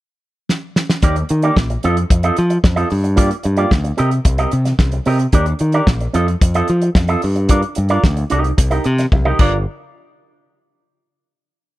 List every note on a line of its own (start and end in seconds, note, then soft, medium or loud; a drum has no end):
0.49 snare medium
0.76 snare medium
0.90 snare loud
1.02 1.22 D#2 medium
1.02 1.19 A#3 medium
1.02 1.17 D#4 medium
1.02 1.17 G4 medium
1.02 1.16 D5 medium
1.02 kick loud
1.02 closed hi-hat medium
1.16 muted clean electric guitar stroke soft
1.16 closed hi-hat soft
1.29 1.49 D#3 medium
1.29 muted clean electric guitar stroke soft
1.29 closed hi-hat medium
1.42 1.56 A#3 medium
1.42 1.56 D#4 medium
1.42 1.56 G4 medium
1.42 1.56 D5 medium
1.42 closed hi-hat soft
1.57 1.76 A#1 medium
1.57 kick medium
1.57 snare loud
1.70 muted clean electric guitar stroke soft
1.70 closed hi-hat soft
1.83 2.03 F2 loud
1.83 2.00 C4 medium
1.83 1.97 F4 medium
1.83 1.97 A4 medium
1.83 1.96 D#5 medium
1.83 closed hi-hat medium
1.97 muted clean electric guitar stroke medium
1.97 closed hi-hat soft
2.10 2.30 F2 loud
2.10 muted clean electric guitar stroke soft
2.10 kick loud
2.10 closed hi-hat medium
2.23 2.36 C4 medium
2.23 2.37 F4 medium
2.23 2.37 A4 medium
2.23 2.37 D#5 medium
2.23 closed hi-hat medium
2.36 2.57 F3 loud
2.36 muted clean electric guitar stroke soft
2.36 closed hi-hat medium
2.50 muted clean electric guitar stroke soft
2.50 closed hi-hat medium
2.64 2.83 F2 medium
2.64 muted clean electric guitar stroke soft
2.64 kick loud
2.64 snare loud
2.76 2.89 C4 medium
2.76 2.88 F4 medium
2.76 2.90 A4 medium
2.76 2.90 D#5 medium
2.76 closed hi-hat soft
2.89 3.30 G2 medium
2.89 muted clean electric guitar stroke soft
2.89 open hi-hat medium
3.04 muted clean electric guitar stroke soft
3.04 closed hi-hat soft
3.16 3.33 A#3 medium
3.16 3.30 F4 medium
3.16 3.30 G4 medium
3.16 3.30 D5 medium
3.16 kick medium
3.16 closed hi-hat medium
3.31 muted clean electric guitar stroke soft
3.31 closed hi-hat soft
3.43 3.64 G2 medium
3.43 muted clean electric guitar stroke soft
3.43 closed hi-hat medium
3.57 3.71 A#3 medium
3.57 3.71 F4 medium
3.57 3.71 G4 medium
3.57 3.70 D5 medium
3.57 closed hi-hat soft
3.71 3.91 D2 medium
3.71 kick loud
3.71 snare loud
3.84 muted clean electric guitar stroke medium
3.84 closed hi-hat medium
3.97 4.18 C3 medium
3.97 4.14 C4 medium
3.97 4.11 G4 medium
3.97 4.11 A#4 medium
3.97 4.10 D#5 medium
3.97 closed hi-hat medium
4.11 muted clean electric guitar stroke soft
4.11 closed hi-hat soft
4.25 4.45 C2 loud
4.25 muted clean electric guitar stroke soft
4.25 kick loud
4.25 closed hi-hat medium
4.38 4.51 C4 medium
4.38 4.52 G4 medium
4.38 4.52 A#4 medium
4.38 4.52 D#5 medium
4.38 closed hi-hat medium
4.51 4.72 C3 medium
4.51 muted clean electric guitar stroke soft
4.51 closed hi-hat medium
4.65 muted clean electric guitar stroke soft
4.65 snare soft
4.65 closed hi-hat soft
4.79 4.98 C2 medium
4.79 kick loud
4.79 snare loud
4.92 muted clean electric guitar stroke soft
4.92 closed hi-hat soft
5.05 5.26 C3 medium
5.05 5.22 C4 medium
5.05 5.20 G4 medium
5.05 5.19 A#4 medium
5.05 5.18 D#5 loud
5.05 open hi-hat medium
5.19 muted clean electric guitar stroke soft
5.19 closed hi-hat soft
5.32 5.53 D#2 medium
5.32 5.49 D4 medium
5.32 5.47 G4 medium
5.32 5.46 A#4 medium
5.32 5.46 D5 medium
5.32 kick loud
5.32 closed hi-hat medium
5.46 muted clean electric guitar stroke soft
5.46 closed hi-hat soft
5.59 5.80 D#3 medium
5.59 muted clean electric guitar stroke soft
5.59 closed hi-hat medium
5.72 5.87 D4 medium
5.72 5.87 G4 medium
5.72 5.87 A#4 medium
5.72 5.87 D5 medium
5.72 closed hi-hat soft
5.87 6.07 A#1 loud
5.87 kick loud
5.87 snare loud
6.00 muted clean electric guitar stroke soft
6.00 closed hi-hat soft
6.13 6.34 F2 loud
6.13 6.30 C4 medium
6.13 6.27 F4 medium
6.13 6.27 A4 medium
6.13 6.27 D#5 medium
6.13 closed hi-hat medium
6.28 muted clean electric guitar stroke medium
6.28 closed hi-hat soft
6.41 6.61 F2 loud
6.41 muted clean electric guitar stroke soft
6.41 kick loud
6.41 closed hi-hat loud
6.54 6.68 C4 medium
6.54 6.68 F4 medium
6.54 6.68 A4 medium
6.54 6.68 D#5 medium
6.54 closed hi-hat medium
6.68 6.88 F3 loud
6.68 muted clean electric guitar stroke medium
6.68 closed hi-hat medium
6.81 muted clean electric guitar stroke soft
6.81 closed hi-hat soft
6.95 7.15 F2 loud
6.95 muted clean electric guitar stroke soft
6.95 kick loud
6.95 snare loud
7.08 7.22 C4 medium
7.08 7.22 F4 medium
7.08 7.23 A4 medium
7.08 7.23 D#5 medium
7.08 closed hi-hat medium
7.22 7.62 G2 medium
7.22 muted clean electric guitar stroke soft
7.22 open hi-hat medium
7.36 muted clean electric guitar stroke soft
7.36 closed hi-hat soft
7.49 7.66 D4 medium
7.49 7.62 F4 medium
7.49 7.62 A#4 medium
7.49 7.61 D5 medium
7.49 kick loud
7.49 closed hi-hat medium
7.62 muted clean electric guitar stroke soft
7.62 closed hi-hat soft
7.75 7.97 G2 medium
7.75 muted clean electric guitar stroke soft
7.75 closed hi-hat medium
7.89 8.04 D4 medium
7.89 8.03 F4 medium
7.89 8.03 A#4 medium
7.89 8.03 D5 medium
7.89 closed hi-hat soft
8.04 8.23 D2 loud
8.04 kick loud
8.04 snare medium
8.17 muted clean electric guitar stroke soft
8.17 closed hi-hat soft
8.30 8.51 C2 loud
8.30 8.51 D#4 medium
8.30 8.44 G4 medium
8.30 8.44 A#4 medium
8.30 8.43 D#5 medium
8.30 closed hi-hat medium
8.44 muted clean electric guitar stroke soft
8.44 closed hi-hat soft
8.57 8.78 C2 loud
8.57 muted clean electric guitar stroke soft
8.57 kick loud
8.57 closed hi-hat medium
8.71 8.84 D#4 medium
8.71 8.85 G4 medium
8.71 8.85 A#4 medium
8.71 8.85 D#5 medium
8.71 closed hi-hat medium
8.84 9.05 C3 loud
8.84 muted clean electric guitar stroke soft
8.84 closed hi-hat medium
8.98 muted clean electric guitar stroke soft
8.98 snare soft
8.98 closed hi-hat medium
9.12 9.32 C2 loud
9.12 muted clean electric guitar stroke soft
9.12 kick loud
9.12 high tom soft
9.25 9.39 D#4 medium
9.25 9.40 G4 medium
9.25 9.39 A#4 medium
9.25 9.39 D#5 medium
9.25 mid tom medium
9.39 9.65 G1 medium
9.39 9.56 D4 medium
9.39 9.56 F4 medium
9.39 9.56 A#4 medium
9.39 9.57 D5 medium
9.39 kick loud
9.39 crash medium